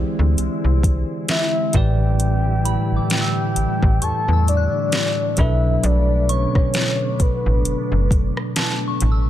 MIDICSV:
0, 0, Header, 1, 7, 480
1, 0, Start_track
1, 0, Key_signature, 2, "minor"
1, 0, Tempo, 909091
1, 1160, Time_signature, 4, 2, 24, 8
1, 4909, End_track
2, 0, Start_track
2, 0, Title_t, "Synth bell"
2, 0, Program_c, 0, 98
2, 1400, Note_on_c, 0, 83, 74
2, 1565, Note_on_c, 0, 86, 55
2, 1695, Note_on_c, 0, 88, 59
2, 2121, Note_on_c, 0, 85, 57
2, 2279, Note_off_c, 0, 88, 0
2, 2286, Note_on_c, 0, 88, 53
2, 2413, Note_on_c, 0, 90, 57
2, 2755, Note_off_c, 0, 83, 0
2, 2844, Note_on_c, 0, 83, 76
2, 2883, Note_off_c, 0, 86, 0
2, 3060, Note_off_c, 0, 85, 0
2, 3211, Note_off_c, 0, 88, 0
2, 3322, Note_on_c, 0, 85, 81
2, 3325, Note_off_c, 0, 90, 0
2, 4197, Note_off_c, 0, 83, 0
2, 4523, Note_on_c, 0, 81, 75
2, 4676, Note_off_c, 0, 85, 0
2, 4687, Note_on_c, 0, 85, 54
2, 4813, Note_on_c, 0, 88, 57
2, 4909, Note_off_c, 0, 81, 0
2, 4909, Note_off_c, 0, 85, 0
2, 4909, Note_off_c, 0, 88, 0
2, 4909, End_track
3, 0, Start_track
3, 0, Title_t, "Soft synth lead"
3, 0, Program_c, 1, 80
3, 687, Note_on_c, 1, 76, 99
3, 928, Note_on_c, 1, 79, 109
3, 936, Note_off_c, 1, 76, 0
3, 1644, Note_off_c, 1, 79, 0
3, 1649, Note_on_c, 1, 79, 108
3, 2129, Note_on_c, 1, 81, 118
3, 2137, Note_off_c, 1, 79, 0
3, 2365, Note_off_c, 1, 81, 0
3, 2369, Note_on_c, 1, 74, 106
3, 2849, Note_on_c, 1, 76, 100
3, 2857, Note_off_c, 1, 74, 0
3, 3088, Note_on_c, 1, 74, 106
3, 3096, Note_off_c, 1, 76, 0
3, 3327, Note_on_c, 1, 73, 103
3, 3335, Note_off_c, 1, 74, 0
3, 3808, Note_on_c, 1, 71, 87
3, 3816, Note_off_c, 1, 73, 0
3, 4524, Note_off_c, 1, 71, 0
3, 4909, End_track
4, 0, Start_track
4, 0, Title_t, "Tine electric piano"
4, 0, Program_c, 2, 4
4, 0, Control_c, 2, 64, 127
4, 0, Note_on_c, 2, 52, 70
4, 0, Note_on_c, 2, 64, 68
4, 0, Note_on_c, 2, 67, 64
4, 0, Note_on_c, 2, 68, 62
4, 0, Note_on_c, 2, 72, 64
4, 0, Note_on_c, 2, 74, 75
4, 897, Note_off_c, 2, 52, 0
4, 899, Note_off_c, 2, 64, 0
4, 901, Note_off_c, 2, 67, 0
4, 902, Note_off_c, 2, 68, 0
4, 904, Note_off_c, 2, 72, 0
4, 906, Note_off_c, 2, 74, 0
4, 916, Note_on_c, 2, 45, 73
4, 921, Note_on_c, 2, 52, 63
4, 925, Note_on_c, 2, 67, 63
4, 928, Control_c, 2, 64, 0
4, 929, Note_on_c, 2, 71, 64
4, 933, Note_on_c, 2, 74, 75
4, 1013, Control_c, 2, 64, 127
4, 2817, Note_off_c, 2, 45, 0
4, 2819, Note_off_c, 2, 52, 0
4, 2821, Note_off_c, 2, 67, 0
4, 2824, Note_off_c, 2, 71, 0
4, 2826, Note_off_c, 2, 74, 0
4, 2837, Note_on_c, 2, 47, 69
4, 2841, Note_on_c, 2, 54, 63
4, 2846, Note_on_c, 2, 62, 65
4, 2847, Control_c, 2, 64, 0
4, 2850, Note_on_c, 2, 69, 60
4, 2854, Note_on_c, 2, 71, 72
4, 2945, Control_c, 2, 64, 127
4, 4737, Note_off_c, 2, 47, 0
4, 4740, Note_off_c, 2, 54, 0
4, 4742, Note_off_c, 2, 62, 0
4, 4744, Note_off_c, 2, 69, 0
4, 4746, Note_off_c, 2, 71, 0
4, 4909, End_track
5, 0, Start_track
5, 0, Title_t, "Ambient pad"
5, 0, Program_c, 3, 92
5, 0, Note_on_c, 3, 50, 79
5, 0, Note_on_c, 3, 56, 77
5, 0, Note_on_c, 3, 60, 73
5, 0, Note_on_c, 3, 64, 85
5, 903, Note_off_c, 3, 56, 0
5, 903, Note_off_c, 3, 60, 0
5, 903, Note_off_c, 3, 64, 0
5, 920, Note_on_c, 3, 64, 85
5, 921, Note_on_c, 3, 55, 74
5, 921, Note_on_c, 3, 57, 71
5, 2819, Note_off_c, 3, 50, 0
5, 2821, Note_off_c, 3, 64, 0
5, 2822, Note_off_c, 3, 55, 0
5, 2840, Note_on_c, 3, 62, 89
5, 2841, Note_on_c, 3, 50, 76
5, 2841, Note_on_c, 3, 59, 70
5, 4909, Note_off_c, 3, 50, 0
5, 4909, Note_off_c, 3, 57, 0
5, 4909, Note_off_c, 3, 59, 0
5, 4909, Note_off_c, 3, 62, 0
5, 4909, End_track
6, 0, Start_track
6, 0, Title_t, "FM bass"
6, 0, Program_c, 4, 39
6, 100, Note_on_c, 4, 38, 92
6, 188, Note_off_c, 4, 38, 0
6, 202, Note_on_c, 4, 36, 48
6, 257, Note_off_c, 4, 36, 0
6, 340, Note_on_c, 4, 36, 88
6, 550, Note_off_c, 4, 36, 0
6, 921, Note_on_c, 4, 33, 108
6, 1464, Note_off_c, 4, 33, 0
6, 1540, Note_on_c, 4, 33, 50
6, 1580, Note_off_c, 4, 33, 0
6, 1881, Note_on_c, 4, 33, 52
6, 1937, Note_off_c, 4, 33, 0
6, 2020, Note_on_c, 4, 33, 99
6, 2108, Note_off_c, 4, 33, 0
6, 2122, Note_on_c, 4, 40, 51
6, 2177, Note_off_c, 4, 40, 0
6, 2261, Note_on_c, 4, 40, 97
6, 2471, Note_off_c, 4, 40, 0
6, 2841, Note_on_c, 4, 35, 103
6, 3051, Note_off_c, 4, 35, 0
6, 3081, Note_on_c, 4, 35, 112
6, 3413, Note_off_c, 4, 35, 0
6, 3460, Note_on_c, 4, 33, 47
6, 3500, Note_off_c, 4, 33, 0
6, 3801, Note_on_c, 4, 33, 54
6, 3856, Note_off_c, 4, 33, 0
6, 3940, Note_on_c, 4, 33, 85
6, 4028, Note_off_c, 4, 33, 0
6, 4041, Note_on_c, 4, 30, 51
6, 4096, Note_off_c, 4, 30, 0
6, 4180, Note_on_c, 4, 30, 96
6, 4390, Note_off_c, 4, 30, 0
6, 4761, Note_on_c, 4, 33, 90
6, 4909, Note_off_c, 4, 33, 0
6, 4909, End_track
7, 0, Start_track
7, 0, Title_t, "Drums"
7, 201, Note_on_c, 9, 42, 73
7, 254, Note_off_c, 9, 42, 0
7, 440, Note_on_c, 9, 36, 90
7, 445, Note_on_c, 9, 42, 69
7, 493, Note_off_c, 9, 36, 0
7, 497, Note_off_c, 9, 42, 0
7, 678, Note_on_c, 9, 42, 69
7, 681, Note_on_c, 9, 38, 115
7, 731, Note_off_c, 9, 42, 0
7, 733, Note_off_c, 9, 38, 0
7, 914, Note_on_c, 9, 42, 80
7, 920, Note_on_c, 9, 36, 111
7, 967, Note_off_c, 9, 42, 0
7, 973, Note_off_c, 9, 36, 0
7, 1160, Note_on_c, 9, 42, 68
7, 1213, Note_off_c, 9, 42, 0
7, 1402, Note_on_c, 9, 42, 81
7, 1454, Note_off_c, 9, 42, 0
7, 1637, Note_on_c, 9, 42, 82
7, 1643, Note_on_c, 9, 38, 125
7, 1690, Note_off_c, 9, 42, 0
7, 1695, Note_off_c, 9, 38, 0
7, 1880, Note_on_c, 9, 42, 74
7, 1933, Note_off_c, 9, 42, 0
7, 2020, Note_on_c, 9, 36, 109
7, 2073, Note_off_c, 9, 36, 0
7, 2122, Note_on_c, 9, 42, 71
7, 2174, Note_off_c, 9, 42, 0
7, 2366, Note_on_c, 9, 42, 67
7, 2419, Note_off_c, 9, 42, 0
7, 2599, Note_on_c, 9, 42, 67
7, 2602, Note_on_c, 9, 38, 107
7, 2652, Note_off_c, 9, 42, 0
7, 2654, Note_off_c, 9, 38, 0
7, 2834, Note_on_c, 9, 42, 82
7, 2840, Note_on_c, 9, 36, 116
7, 2887, Note_off_c, 9, 42, 0
7, 2893, Note_off_c, 9, 36, 0
7, 3081, Note_on_c, 9, 42, 70
7, 3134, Note_off_c, 9, 42, 0
7, 3322, Note_on_c, 9, 42, 77
7, 3375, Note_off_c, 9, 42, 0
7, 3460, Note_on_c, 9, 36, 99
7, 3462, Note_on_c, 9, 37, 70
7, 3513, Note_off_c, 9, 36, 0
7, 3515, Note_off_c, 9, 37, 0
7, 3557, Note_on_c, 9, 42, 78
7, 3563, Note_on_c, 9, 38, 127
7, 3610, Note_off_c, 9, 42, 0
7, 3616, Note_off_c, 9, 38, 0
7, 3800, Note_on_c, 9, 36, 100
7, 3800, Note_on_c, 9, 42, 70
7, 3853, Note_off_c, 9, 36, 0
7, 3853, Note_off_c, 9, 42, 0
7, 4041, Note_on_c, 9, 42, 76
7, 4094, Note_off_c, 9, 42, 0
7, 4281, Note_on_c, 9, 36, 95
7, 4286, Note_on_c, 9, 42, 62
7, 4334, Note_off_c, 9, 36, 0
7, 4339, Note_off_c, 9, 42, 0
7, 4421, Note_on_c, 9, 37, 89
7, 4473, Note_off_c, 9, 37, 0
7, 4519, Note_on_c, 9, 42, 69
7, 4522, Note_on_c, 9, 38, 119
7, 4572, Note_off_c, 9, 42, 0
7, 4574, Note_off_c, 9, 38, 0
7, 4755, Note_on_c, 9, 42, 82
7, 4807, Note_off_c, 9, 42, 0
7, 4909, End_track
0, 0, End_of_file